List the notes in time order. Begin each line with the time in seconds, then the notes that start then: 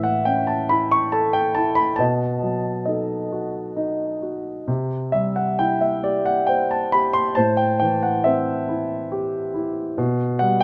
Already playing: A2 E3 E5
0.04 F#5
0.25 C#4 G5
0.47 A5
0.69 E4 B5
0.91 C#6
1.12 A4 A5
1.33 G5
1.55 E4 A5
1.75 B5
1.96 B2 A5
2.00 D#5
2.42 F#3
2.86 D#4 A4 D#5
3.32 F#4
3.76 D#4
4.22 F#4
4.68 C3
5.12 G3 E5
5.36 F#5
5.59 E4 G5
5.81 E5
6.04 G4 D5
6.26 F#5
6.47 C5 G5
6.71 A5
6.92 G4 B5
7.13 C6
7.35 A2 C5 A5
7.57 G5
7.80 E3 G5
8.03 F#5
8.24 C4 C5 E5
8.69 E4
9.12 G4
9.54 E4
9.98 B2
10.39 G3 F#5
10.61 G5